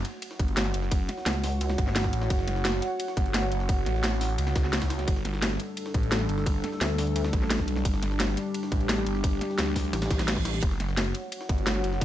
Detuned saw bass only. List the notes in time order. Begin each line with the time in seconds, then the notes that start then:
0.40 G1
0.74 F#1
1.78 G1
2.13 A1
2.30 F#1
2.48 F#1
3.17 G1
3.52 F#1
3.86 A1
4.38 C#2
4.56 C#2
5.08 G1
5.25 G1
5.94 A1
6.29 G1
7.33 A1
7.68 B1
7.85 G1
8.03 G1
8.72 A1
9.07 G1
9.59 D2
10.63 F#1
10.80 F#1
11.49 G1
11.84 F#1